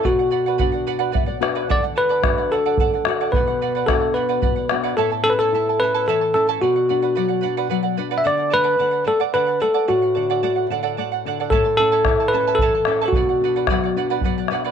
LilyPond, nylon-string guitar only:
\new Staff \with { instrumentName = "Nylon-string guitar" } { \time 6/8 \key b \minor \tempo 4. = 73 b,4 <b d' fis'>4 e''16 d''16 <b d' fis' b'>8 | d4 <a d' fis'>4 r8 <a d' fis'>8 | b,4 <b d' fis'>4 r8 <b d' fis'>8 | a,8 cis'8 e'8 cis'8 e8 cis'8 |
b,8 d'8 fis8 d'8 fis8 d'8 | d8 a8 d8 a8 d8 a8 | a,8 d8 a8 d8 a8 d8 | a,8 cis'8 e'8 cis'8 e8 cis'8 |
b,8 d'8 fis8 d'8 fis8 d'8 | }